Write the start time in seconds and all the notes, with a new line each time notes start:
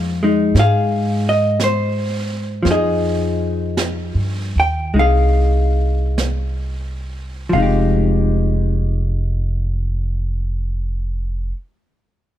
Already playing: F2 F3 G#3 D#4 G#4 F5
0.23 G#3 D#4
0.55 G#2, brush sweep, snare
0.59 G#4 F5
1.29 D#5
1.60 brush sweep, snare, hi-hat pedal
1.64 C5
2.63 F2 F3, brush sweep, snare
2.70 D#4 G#4 D#5
3.77 brush sweep, snare, hi-hat pedal
4.15 G2
4.56 D#2 G5
4.94 C2 G#3 D#4, brush sweep
4.99 G#4 F5
6.18 brush sweep, snare, hi-hat pedal
7.49 F1 F3 F5
7.55 G#3 D#4
7.62 G4